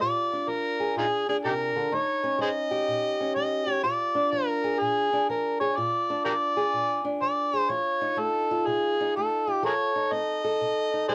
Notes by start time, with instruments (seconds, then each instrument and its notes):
0.01 steel-string acoustic guitar A#2 F4, harmonica D5
0.33 steel-string acoustic guitar D4
0.48 steel-string acoustic guitar F3, harmonica A#4
0.80 steel-string acoustic guitar G#4
0.96 steel-string acoustic guitar A#2, harmonica D#4 F4 G#4
1.29 steel-string acoustic guitar D4, harmonica G#4
1.45 steel-string acoustic guitar C3, harmonica D#4 G4 A#4
1.76 steel-string acoustic guitar D3
1.92 steel-string acoustic guitar D#3 D#4, harmonica C#5
2.24 steel-string acoustic guitar C#4
2.39 steel-string acoustic guitar G3, harmonica G#4 C5 D#5
2.71 steel-string acoustic guitar G4
2.88 steel-string acoustic guitar A#2
3.20 steel-string acoustic guitar C#4
3.35 steel-string acoustic guitar G3, harmonica D#5
3.67 steel-string acoustic guitar G4
3.83 steel-string acoustic guitar A#2 F4, harmonica D5
4.15 steel-string acoustic guitar D4
4.32 steel-string acoustic guitar F3, harmonica A#4
4.64 steel-string acoustic guitar G#4
4.79 steel-string acoustic guitar A#2, harmonica G#4
5.13 steel-string acoustic guitar D4
5.29 steel-string acoustic guitar F3, harmonica A#4
5.60 steel-string acoustic guitar G#4, harmonica C#5
5.76 steel-string acoustic guitar A#2 F4, harmonica D5
6.10 steel-string acoustic guitar D4
6.25 steel-string acoustic guitar F3, harmonica G4 A#4 D5
6.57 steel-string acoustic guitar G#4
6.73 steel-string acoustic guitar A#2
7.05 steel-string acoustic guitar D4
7.21 steel-string acoustic guitar F3, harmonica D5
7.53 steel-string acoustic guitar G#4
7.59 harmonica C5
7.69 steel-string acoustic guitar F3 F4, harmonica C#5
8.01 steel-string acoustic guitar D#4
8.17 steel-string acoustic guitar A3, harmonica A4
8.51 steel-string acoustic guitar F4
8.67 steel-string acoustic guitar C3, harmonica G#4
9.00 steel-string acoustic guitar D#4
9.16 steel-string acoustic guitar A3, harmonica A4
9.47 steel-string acoustic guitar F4
9.63 steel-string acoustic guitar F3 A4, harmonica G#4 A#4 C#5
9.96 steel-string acoustic guitar D#4
10.12 steel-string acoustic guitar C4, harmonica D#5
10.44 steel-string acoustic guitar A4
10.61 steel-string acoustic guitar C3
10.93 steel-string acoustic guitar D#4
11.08 steel-string acoustic guitar G3, harmonica G#4 C5 D#5